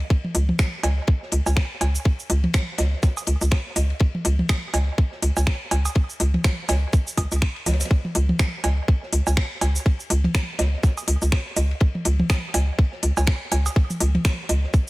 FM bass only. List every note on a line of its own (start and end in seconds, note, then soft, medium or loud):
0.35 0.52 C#2 loud
0.83 1.01 C#2 medium
1.32 1.41 C#2 medium
1.46 1.61 C#2 medium
1.81 1.98 C#2 medium
2.30 2.47 C#2 loud
2.79 2.96 C#2 medium
3.27 3.37 C#2 medium
3.41 3.56 C#2 medium
3.76 3.93 C#2 medium
4.25 4.42 C#2 loud
4.74 4.91 C#2 medium
5.23 5.32 C#2 medium
5.37 5.51 C#2 medium
5.71 5.89 C#2 medium
6.20 6.37 C#2 loud
6.69 6.86 C#2 medium
7.18 7.27 C#2 medium
7.32 7.46 C#2 medium
7.66 7.84 C#2 medium
8.15 8.32 C#2 loud
8.64 8.81 C#2 medium
9.13 9.22 C#2 medium
9.27 9.41 C#2 medium
9.61 9.79 C#2 medium
10.10 10.27 C#2 loud
10.59 10.76 C#2 medium
11.08 11.17 C#2 medium
11.22 11.37 C#2 medium
11.57 11.74 C#2 medium
12.05 12.23 C#2 loud
12.54 12.71 C#2 medium
13.03 13.12 C#2 medium
13.17 13.32 C#2 medium
13.52 13.69 C#2 medium
14.01 14.18 C#2 loud
14.49 14.67 C#2 medium